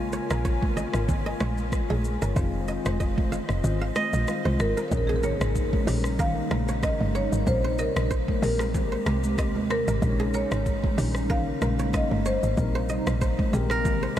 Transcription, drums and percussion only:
0.13 shaker
0.30 cross-stick, shaker
0.45 kick, shaker
0.62 kick, high conga
0.77 low conga, shaker
0.94 cross-stick, shaker
1.09 kick, low conga, shaker
1.40 cross-stick, high conga, shaker
1.58 high conga, shaker
1.72 kick, cross-stick, shaker
1.90 high conga
2.04 shaker
2.22 shaker
2.36 kick, shaker
2.68 shaker
2.86 cross-stick, high conga, shaker
3.00 kick, shaker
3.18 kick, high conga
3.32 low conga, shaker
3.49 cross-stick, shaker
3.64 low conga, shaker
3.96 cross-stick, high conga, shaker
4.13 high conga, shaker
4.28 cross-stick, shaker
4.46 high conga
4.60 cross-stick, shaker
4.77 shaker
4.92 kick, shaker
5.23 shaker
5.41 cross-stick, shaker
5.55 kick, shaker
5.73 kick, high conga
5.87 open hi-hat, low conga, shaker
6.04 cross-stick, shaker
6.19 kick, low conga, shaker
6.51 cross-stick, high conga, shaker
6.68 high conga, shaker
6.83 kick, cross-stick, shaker
7.01 high conga
7.15 shaker
7.33 shaker
7.47 kick, shaker
7.79 shaker
7.96 cross-stick, shaker
8.11 kick, shaker
8.28 kick, high conga
8.42 open hi-hat, low conga, shaker
8.59 cross-stick, shaker
8.74 kick, low conga, shaker
9.06 cross-stick, high conga, shaker
9.24 high conga, shaker
9.38 kick, cross-stick, shaker
9.56 high conga
9.70 cross-stick, shaker
9.88 shaker
10.02 kick, shaker
10.34 shaker
10.51 cross-stick, shaker
10.66 kick, shaker
10.84 kick, high conga
10.98 open hi-hat, low conga, shaker
11.15 cross-stick, shaker
11.30 kick, low conga, shaker
11.62 cross-stick, high conga, shaker
11.79 high conga, shaker
11.93 kick, cross-stick, shaker
12.11 high conga
12.26 shaker
12.43 shaker
12.57 kick, shaker
12.89 shaker
13.07 cross-stick, shaker
13.21 kick, shaker
13.39 kick, high conga
13.53 low conga, shaker
13.70 cross-stick, shaker
13.85 kick, low conga, shaker

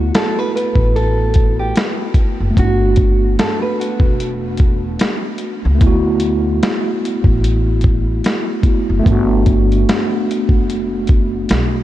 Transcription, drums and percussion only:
0.15 snare, closed hi-hat
0.57 closed hi-hat
0.75 kick
0.96 closed hi-hat
1.34 kick, closed hi-hat
1.76 snare, closed hi-hat
2.14 kick, closed hi-hat
2.57 kick, closed hi-hat
2.96 kick, closed hi-hat
3.39 snare, closed hi-hat
3.81 closed hi-hat
4.00 kick
4.20 closed hi-hat
4.58 kick, closed hi-hat
4.99 snare, closed hi-hat
5.38 closed hi-hat
5.81 kick, closed hi-hat
6.20 closed hi-hat
6.63 snare, closed hi-hat
7.05 closed hi-hat
7.24 kick
7.44 closed hi-hat
7.81 kick, closed hi-hat
8.24 snare, closed hi-hat
8.63 kick, closed hi-hat
9.06 kick, closed hi-hat
9.46 kick, closed hi-hat
9.72 closed hi-hat
9.89 snare, closed hi-hat
10.31 closed hi-hat
10.49 kick
10.70 closed hi-hat
11.07 kick, closed hi-hat
11.49 snare, closed hi-hat

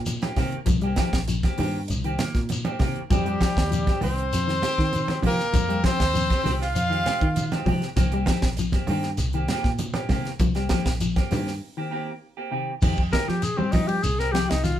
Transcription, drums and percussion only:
0.06 closed hi-hat, high conga, shekere
0.22 snare, closed hi-hat, high conga
0.36 kick, snare, open hi-hat, low conga, shekere
0.52 closed hi-hat
0.66 kick, closed hi-hat, high conga, low conga, shekere
0.81 closed hi-hat
0.96 kick, snare, closed hi-hat, high conga, shekere
1.13 kick, snare, closed hi-hat
1.28 closed hi-hat, high conga, shekere
1.43 kick, snare, closed hi-hat, high conga
1.58 open hi-hat, low conga, shekere
1.88 closed hi-hat, high conga, shekere
2.04 closed hi-hat
2.19 snare, closed hi-hat, low conga, shekere
2.35 kick, snare, closed hi-hat
2.49 closed hi-hat, high conga, shekere
2.65 closed hi-hat, high conga
2.79 kick, snare, open hi-hat, low conga, shekere
2.96 closed hi-hat
3.10 kick, closed hi-hat, high conga, low conga, shekere
3.26 closed hi-hat
3.41 kick, snare, closed hi-hat, high conga, shekere
3.57 kick, snare, closed hi-hat
3.72 closed hi-hat, shekere
3.87 kick, snare, closed hi-hat, high conga
4.01 open hi-hat, high conga, low conga, shekere
4.18 closed hi-hat
4.32 snare, closed hi-hat, high conga, shekere
4.49 snare, closed hi-hat
4.62 snare, closed hi-hat, low conga, shekere
4.78 kick, snare
4.93 closed hi-hat, high conga, shekere
5.08 snare, closed hi-hat, high conga
5.23 kick, open hi-hat, low conga, shekere
5.39 snare, closed hi-hat
5.54 kick, closed hi-hat, high conga, low conga, shekere
5.70 closed hi-hat
5.84 kick, snare, closed hi-hat, high conga, shekere
6.00 kick, snare, closed hi-hat
6.15 closed hi-hat, high conga, shekere
6.30 kick, snare, closed hi-hat, high conga
6.46 snare, open hi-hat, high conga, low conga, shekere
6.62 snare
6.76 closed hi-hat, high conga, shekere
6.93 closed hi-hat
7.05 snare, closed hi-hat, low conga, shekere
7.21 kick, closed hi-hat
7.36 closed hi-hat, high conga, shekere
7.52 snare, closed hi-hat, high conga
7.66 kick, open hi-hat, low conga, shekere
7.82 snare, closed hi-hat
7.97 kick, snare, closed hi-hat, high conga, low conga, shekere
8.12 closed hi-hat
8.26 kick, snare, closed hi-hat, high conga, shekere
8.42 kick, snare, closed hi-hat
8.57 closed hi-hat, high conga, shekere
8.72 kick, snare, closed hi-hat, high conga
8.87 open hi-hat, low conga, shekere
9.03 snare, closed hi-hat
9.17 snare, closed hi-hat, high conga, shekere
9.33 closed hi-hat
9.48 snare, closed hi-hat, low conga, shekere
9.64 kick, snare
9.79 closed hi-hat, high conga, shekere
9.94 snare, closed hi-hat, high conga
10.09 kick, snare, open hi-hat, low conga, shekere
10.25 snare, closed hi-hat
10.40 kick, closed hi-hat, high conga, low conga, shekere
10.55 snare, closed hi-hat
10.69 kick, snare, closed hi-hat, high conga, shekere
10.86 kick, snare, closed hi-hat
11.00 closed hi-hat, high conga, shekere
11.16 kick, snare, closed hi-hat, high conga
11.31 snare, open hi-hat, high conga, low conga, shekere
11.47 snare
12.82 kick, crash, high conga, low conga, shekere
12.98 kick
13.12 kick, snare, ride bell, high conga, shekere
13.29 snare
13.42 snare, ride bell, high conga, shekere
13.59 high conga
13.72 kick, snare, open hi-hat, high conga, low conga, shekere
13.89 ride bell
14.03 ride bell, high conga, shekere
14.19 snare
14.34 snare, ride bell, shekere
14.50 snare, ride bell
14.64 snare, ride bell, high conga, shekere

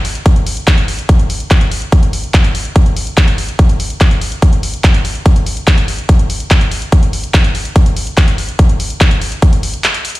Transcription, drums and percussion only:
0.05 open hi-hat
0.15 closed hi-hat
0.26 kick, closed hi-hat
0.36 closed hi-hat
0.46 open hi-hat
0.57 closed hi-hat
0.67 kick, clap, closed hi-hat
0.78 closed hi-hat
0.88 open hi-hat
0.99 closed hi-hat
1.09 kick, closed hi-hat
1.19 closed hi-hat
1.30 open hi-hat
1.40 closed hi-hat
1.51 kick, clap, closed hi-hat
1.61 closed hi-hat
1.71 open hi-hat
1.82 closed hi-hat
1.92 kick, closed hi-hat
2.03 closed hi-hat
2.13 open hi-hat
2.24 closed hi-hat
2.34 kick, clap, closed hi-hat
2.44 closed hi-hat
2.55 open hi-hat
2.65 closed hi-hat
2.76 kick, closed hi-hat
2.86 closed hi-hat
2.96 open hi-hat
3.07 closed hi-hat
3.17 kick, clap, closed hi-hat
3.28 closed hi-hat
3.38 open hi-hat
3.49 closed hi-hat
3.59 kick, closed hi-hat
3.69 closed hi-hat
3.80 open hi-hat
3.90 closed hi-hat
4.01 kick, clap, closed hi-hat
4.11 closed hi-hat
4.21 open hi-hat
4.32 closed hi-hat
4.42 kick, closed hi-hat
4.53 closed hi-hat
4.63 open hi-hat
4.74 closed hi-hat
4.84 kick, clap, closed hi-hat
4.94 closed hi-hat
5.05 open hi-hat
5.15 closed hi-hat
5.26 kick, closed hi-hat
5.36 closed hi-hat
5.46 open hi-hat
5.57 closed hi-hat
5.67 kick, clap, closed hi-hat
5.78 closed hi-hat
5.88 open hi-hat
5.99 closed hi-hat
6.09 kick, closed hi-hat
6.19 closed hi-hat
6.30 open hi-hat
6.40 closed hi-hat
6.51 kick, clap, closed hi-hat
6.61 closed hi-hat
6.71 open hi-hat
6.82 closed hi-hat
6.92 kick, closed hi-hat
7.03 closed hi-hat
7.13 open hi-hat
7.24 closed hi-hat
7.34 kick, clap, closed hi-hat
7.44 closed hi-hat
7.55 open hi-hat
7.65 closed hi-hat
7.76 kick, closed hi-hat
7.86 closed hi-hat
7.96 open hi-hat
8.07 closed hi-hat
8.17 kick, clap, closed hi-hat
8.28 closed hi-hat
8.38 open hi-hat
8.49 closed hi-hat
8.59 kick, closed hi-hat
8.69 closed hi-hat
8.80 open hi-hat
8.90 closed hi-hat
9.01 kick, clap, closed hi-hat
9.11 closed hi-hat
9.21 open hi-hat
9.32 closed hi-hat
9.42 kick, closed hi-hat
9.53 closed hi-hat
9.63 open hi-hat
9.74 closed hi-hat
9.84 clap, closed hi-hat
9.94 closed hi-hat
10.05 closed hi-hat, open hi-hat
10.10 closed hi-hat
10.15 closed hi-hat

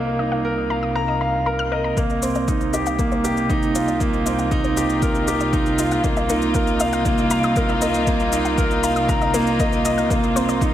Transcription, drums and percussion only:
1.97 kick, shaker
2.10 shaker
2.22 shaker
2.35 shaker
2.48 kick, shaker
2.61 shaker
2.73 shaker
2.86 shaker
2.99 kick, shaker
3.12 shaker
3.24 shaker
3.37 shaker
3.50 kick, shaker
3.63 shaker
3.75 shaker
3.88 shaker
4.00 kick, shaker
4.13 shaker
4.26 shaker
4.39 shaker
4.51 kick, shaker
4.64 shaker
4.77 shaker
4.90 shaker
5.02 kick, shaker
5.15 shaker
5.28 shaker
5.40 shaker
5.53 kick, shaker
5.66 shaker
5.79 shaker
5.91 shaker
6.04 kick, shaker
6.17 shaker
6.29 shaker
6.42 shaker
6.54 kick, shaker
6.67 shaker
6.80 shaker
6.93 shaker
7.05 kick, shaker
7.18 shaker
7.31 shaker
7.43 shaker
7.56 kick, shaker
7.69 shaker
7.81 shaker
7.94 shaker
8.07 kick, shaker
8.20 shaker
8.32 shaker
8.45 shaker
8.58 kick, shaker
8.71 shaker
8.84 shaker
8.96 shaker
9.09 kick, shaker
9.21 shaker
9.34 shaker
9.47 shaker
9.59 kick, shaker
9.73 shaker
9.85 shaker
9.98 shaker
10.10 kick, shaker
10.24 mid tom, shaker
10.36 shaker
10.49 shaker
10.61 kick, mid tom, shaker

